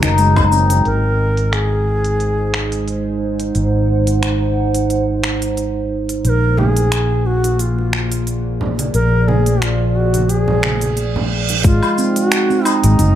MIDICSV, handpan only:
0, 0, Header, 1, 2, 480
1, 0, Start_track
1, 0, Tempo, 674157
1, 610, Time_signature, 4, 2, 24, 8
1, 9364, End_track
2, 0, Start_track
2, 0, Title_t, "Handpan"
2, 0, Program_c, 0, 114
2, 22, Note_on_c, 0, 63, 111
2, 125, Note_off_c, 0, 63, 0
2, 133, Note_on_c, 0, 56, 90
2, 249, Note_off_c, 0, 56, 0
2, 263, Note_on_c, 0, 63, 103
2, 366, Note_off_c, 0, 63, 0
2, 372, Note_on_c, 0, 60, 78
2, 488, Note_off_c, 0, 60, 0
2, 8290, Note_on_c, 0, 56, 91
2, 8414, Note_off_c, 0, 56, 0
2, 8532, Note_on_c, 0, 60, 72
2, 8888, Note_off_c, 0, 60, 0
2, 8901, Note_on_c, 0, 60, 70
2, 9005, Note_off_c, 0, 60, 0
2, 9143, Note_on_c, 0, 56, 76
2, 9240, Note_off_c, 0, 56, 0
2, 9250, Note_on_c, 0, 63, 80
2, 9364, Note_off_c, 0, 63, 0
2, 9364, End_track
0, 0, End_of_file